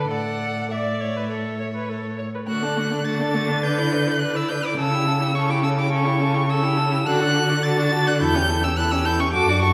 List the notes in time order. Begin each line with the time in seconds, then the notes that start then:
Already playing: A4
0.10 A2 A4 D5 F#5
0.70 D5 E5
1.00 C#5
1.16 B4
1.29 A4 C#5
1.59 C#5
1.75 B4
1.89 A4
2.18 C#5
2.34 B4
2.47 D3 A3 F#4 F#6
2.62 D4 A4
2.77 A3 F#4
2.90 D4 A4
3.05 A3 F#4 A6
3.19 D4 A4
3.34 A3 F#4
3.48 D4 A4
3.63 D4 B4 G6
3.77 E4 D5
3.91 D4 B4
4.06 E4 D5
4.19 D4 B4 F#6
4.34 E4 D5 E6
4.49 D4 B4 G6
4.63 E4 D5 D6
4.76 C#3 C#4 A4 E6
4.91 E4 G4
5.06 C#4 A4
5.20 E4 G4
5.34 C#4 A4 C#6
5.49 E4 G4 D6
5.63 C#4 A4 E6
5.77 E4 G4 D6
5.91 C#4 A4 C#6
6.05 E4 G4
6.20 C#4 A4
6.34 E4 G4
6.48 C#4 A4 E6
6.62 E4 G4
6.76 C#4 A4
6.91 E4 G4
7.06 D3 F#4 A4 F#6
7.20 D4 F#4
7.34 F#4 A4
7.49 D4 F#4
7.63 F#4 A4 A6
7.77 D4 F#4
7.91 F#4 A4
8.05 D4 F#4 F#6
8.20 E2 E4 A4 G6
8.34 C#4 G4
8.48 E4 A4
8.63 C#4 G4 E6
8.77 E4 A4 F#6
8.91 C#4 G4 E6
9.05 E4 A4 G6
9.19 C#4 G4 C#6
9.33 F#2 F#4 A4 D6
9.48 D4 F#4
9.62 F#4 A4 C#6